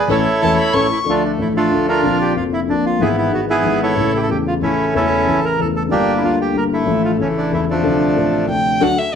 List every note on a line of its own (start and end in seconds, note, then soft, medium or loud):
0.08 0.23 A1 medium
0.08 0.23 A2 medium
0.08 0.23 E3 medium
0.08 0.23 A3 medium
0.08 0.23 C#4 medium
0.08 0.23 E4 medium
0.08 0.87 E4 medium
0.08 0.23 A4 medium
0.08 0.87 A4 medium
0.08 0.87 C#5 medium
0.41 0.56 E1 soft
0.41 0.56 E2 soft
0.41 0.56 E3 soft
0.41 0.56 A3 soft
0.41 0.55 C#4 soft
0.41 0.56 C#4 soft
0.41 0.55 E4 soft
0.41 0.55 A4 medium
0.41 0.56 A4 medium
0.41 0.57 A5 medium
0.57 0.75 B5 medium
0.73 0.88 A1 soft
0.73 0.88 A2 medium
0.73 0.88 E3 soft
0.73 0.87 A3 soft
0.73 0.88 C#4 soft
0.73 0.88 E4 soft
0.73 0.88 A4 soft
0.73 1.06 C#6 medium
0.92 0.99 E4 medium
1.04 1.37 D2 soft
1.04 1.37 D3 medium
1.04 1.35 F3 soft
1.04 1.37 A3 soft
1.04 1.37 D4 soft
1.08 1.53 A3 medium
1.08 1.24 D4 soft
1.08 1.23 F4 medium
1.08 1.38 A4 soft
1.25 1.32 D4 medium
1.37 1.70 A1 soft
1.37 1.69 A2 soft
1.37 1.67 F3 soft
1.37 1.69 A3 soft
1.37 1.70 D4 soft
1.41 1.48 E4 medium
1.41 1.70 A4 soft
1.56 2.01 A3 medium
1.56 1.87 D4 medium
1.56 1.86 F4 medium
1.69 2.02 D2 soft
1.69 2.00 D3 soft
1.69 2.01 F3 soft
1.69 2.01 A3 soft
1.69 2.02 D4 soft
1.73 2.03 A4 soft
1.89 2.33 D4 medium
1.89 2.33 F4 medium
1.89 2.18 A#4 medium
2.02 2.34 A#1 medium
2.02 2.34 A#2 medium
2.02 2.33 D3 soft
2.02 2.34 A#3 soft
2.02 2.35 C4 soft
2.02 2.35 F4 soft
2.21 2.36 G4 medium
2.34 2.67 F1 soft
2.34 2.67 F2 soft
2.34 2.66 D3 soft
2.34 2.66 A#3 soft
2.34 2.67 C4 soft
2.34 2.44 F4 medium
2.38 2.68 F4 soft
2.53 2.60 E4 medium
2.67 2.99 A#1 soft
2.67 2.99 A#2 soft
2.67 2.98 D3 soft
2.67 2.99 A#3 soft
2.67 2.99 C4 soft
2.67 2.85 D4 medium
2.71 3.00 F4 soft
2.86 3.01 F4 medium
2.99 3.31 G#1 medium
2.99 3.29 G#2 medium
2.99 3.30 E3 soft
2.99 3.31 G#3 soft
2.99 3.45 B3 medium
2.99 3.32 B3 soft
2.99 3.16 E4 medium
2.99 3.09 G#4 medium
2.99 3.32 G#4 medium
3.18 3.32 E4 medium
3.30 3.63 G#1 soft
3.30 3.32 G#2 soft
3.30 3.61 G#2 soft
3.30 3.62 E3 soft
3.30 3.63 G#3 soft
3.30 3.63 B3 soft
3.30 3.41 F#4 medium
3.34 3.64 G#4 soft
3.50 3.94 B3 medium
3.50 3.81 E4 medium
3.50 3.79 G#4 medium
3.62 3.95 G#1 soft
3.62 3.64 G#2 soft
3.62 3.95 G#2 soft
3.62 3.94 E3 soft
3.62 3.95 G#3 soft
3.62 3.96 B3 soft
3.67 3.96 G#4 soft
3.83 4.27 E4 medium
3.83 4.14 A4 medium
3.83 4.12 C#5 medium
3.94 4.27 A1 soft
3.94 4.27 A2 medium
3.94 4.26 C#3 soft
3.94 4.27 E3 soft
3.94 4.28 A3 soft
3.94 4.28 E4 soft
4.15 4.21 G4 medium
4.15 4.18 A4 medium
4.23 4.30 A4 medium
4.28 4.60 E1 soft
4.28 4.60 E2 soft
4.28 4.58 C#3 soft
4.28 4.60 E3 soft
4.28 4.60 A3 soft
4.28 4.61 E4 soft
4.28 4.38 G4 medium
4.47 4.54 F4 medium
4.60 4.93 A1 soft
4.60 4.92 A2 soft
4.60 4.91 C#3 soft
4.60 4.92 E3 soft
4.60 5.07 A3 medium
4.60 4.93 A3 soft
4.60 4.94 C#4 medium
4.60 4.85 E4 medium
4.64 4.94 E4 soft
4.93 5.25 E1 medium
4.93 5.25 E2 medium
4.93 5.24 C#3 soft
4.93 5.25 E3 soft
4.93 5.25 A3 soft
4.93 5.40 C#4 medium
4.93 5.40 E4 medium
4.97 5.26 E4 soft
4.97 5.45 A4 medium
5.26 5.57 A1 soft
5.26 5.57 A2 soft
5.26 5.56 C#3 soft
5.26 5.57 E3 soft
5.26 5.58 A3 soft
5.26 5.58 E4 soft
5.45 5.60 A#4 medium
5.57 5.90 E1 soft
5.57 5.90 E2 soft
5.57 5.88 C#3 soft
5.57 5.89 E3 soft
5.57 5.90 A3 soft
5.57 5.68 A4 medium
5.61 5.91 E4 soft
5.76 5.83 A4 medium
5.88 6.21 G1 medium
5.88 6.21 G2 medium
5.88 6.19 D3 soft
5.88 6.20 G3 soft
5.88 6.21 A#3 soft
5.88 6.36 A#3 medium
5.88 6.36 D4 medium
5.88 6.14 G4 medium
5.92 6.22 F4 soft
6.17 6.23 E4 medium
6.22 6.53 D2 soft
6.22 6.51 D3 soft
6.22 6.52 G3 soft
6.22 6.53 A#3 soft
6.22 6.39 F4 medium
6.22 6.54 F4 soft
6.41 6.57 G4 medium
6.52 6.85 G1 soft
6.52 6.85 G2 soft
6.52 6.84 D3 soft
6.52 6.85 G3 soft
6.52 6.85 A#3 soft
6.56 6.86 F4 soft
6.56 6.64 A#4 medium
6.73 7.17 A3 medium
6.73 7.02 E4 medium
6.85 7.17 A1 medium
6.85 7.18 A2 medium
6.85 7.17 D3 soft
6.85 7.17 F3 soft
6.85 7.18 A3 soft
6.85 7.18 F4 medium
7.05 7.12 F4 medium
7.17 7.50 A1 soft
7.17 7.50 A2 soft
7.17 7.49 C#3 soft
7.17 7.50 E3 soft
7.17 7.65 E3 soft
7.17 7.50 A3 soft
7.17 7.65 A3 soft
7.17 7.28 C#4 medium
7.21 7.51 E4 soft
7.38 7.52 D4 medium
7.50 7.82 E1 soft
7.50 7.83 E2 soft
7.50 7.82 C#3 soft
7.50 7.82 E3 soft
7.50 7.82 A3 soft
7.50 7.83 E4 soft
7.50 7.61 E4 medium
7.70 8.46 F3 soft
7.70 8.46 A3 medium
7.70 8.46 D4 medium
7.81 8.14 D2 medium
7.81 8.13 C3 soft
7.81 8.14 D3 medium
7.81 8.14 F3 soft
7.81 8.15 A3 soft
7.86 8.16 D4 soft
8.14 8.47 A1 soft
8.14 8.47 A2 soft
8.14 8.45 C3 soft
8.14 8.46 F3 soft
8.14 8.47 A3 soft
8.18 8.48 D4 soft
8.46 8.79 D2 soft
8.46 8.78 C3 soft
8.46 8.79 D3 soft
8.46 8.79 F3 soft
8.46 8.79 A3 soft
8.46 8.80 D4 soft
8.46 8.84 G5 medium
8.80 8.95 D2 medium
8.80 8.95 D3 medium
8.80 8.94 F#3 medium
8.80 8.95 A3 medium
8.80 8.95 D4 medium
8.80 8.95 F#4 medium
8.80 8.95 A4 medium
8.80 9.00 F#5 medium
8.98 9.15 E5 medium